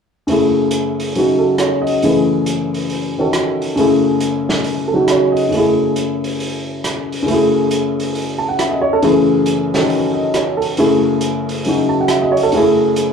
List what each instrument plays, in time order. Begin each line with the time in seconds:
0.27 upright piano F#2 C#3 A3 E4, open hi-hat
0.32 upright piano G#4
0.71 closed hi-hat
1.00 open hi-hat
1.15 upright piano C#3 F#3 D#4 F#4, open hi-hat
1.39 upright piano A4
1.58 upright piano C#5, cross-stick, closed hi-hat
1.82 upright piano D#5
1.87 open hi-hat
2.02 upright piano F#2 C#3 E3 A3 G#4, open hi-hat
2.46 closed hi-hat
2.74 open hi-hat
2.90 open hi-hat
3.18 upright piano D#3 C#4 F#4 A4
3.33 cross-stick, closed hi-hat
3.62 open hi-hat
3.75 upright piano F#2 C#3 A3, open hi-hat
3.80 upright piano E4 G#4
4.20 closed hi-hat
4.49 snare
4.64 open hi-hat
4.88 upright piano A4
4.92 upright piano C#3 F#3 D#4 F#4
5.08 upright piano C#5, cross-stick, closed hi-hat
5.32 upright piano D#5
5.37 open hi-hat
5.48 upright piano F#2 C#3, open hi-hat
5.54 upright piano A3 E4
5.59 upright piano G#4
5.96 closed hi-hat
6.24 open hi-hat
6.40 open hi-hat
6.84 cross-stick, closed hi-hat
7.12 open hi-hat
7.22 upright piano F#2 C#3
7.28 upright piano A3 E4, open hi-hat
7.33 upright piano G#4
7.71 closed hi-hat
8.00 open hi-hat
8.15 open hi-hat
8.38 upright piano A5
8.49 upright piano F#5
8.59 upright piano E5, cross-stick, closed hi-hat
8.71 upright piano D#5
8.81 upright piano C#5
8.93 upright piano A4
9.02 upright piano F#2 C#3 E3 A3 G#4, open hi-hat
9.46 closed hi-hat
9.74 upright piano D#3 C#4 F#4 A4, snare, open hi-hat
9.90 open hi-hat
10.14 upright piano D#5
10.34 upright piano C#5, cross-stick, closed hi-hat
10.57 upright piano A4
10.62 open hi-hat
10.77 upright piano F#2 C#3 A3 E4 G#4, open hi-hat
11.21 closed hi-hat
11.49 open hi-hat
11.65 upright piano C#3 F#3 D#4 F#4, open hi-hat
11.89 upright piano A5
12.01 upright piano F#5
12.08 upright piano E5, cross-stick, closed hi-hat
12.22 upright piano D#5
12.32 upright piano C#5
12.37 open hi-hat
12.43 upright piano A4
12.52 upright piano F#2 C#3 A3, open hi-hat
12.57 upright piano E4 G#4
12.96 closed hi-hat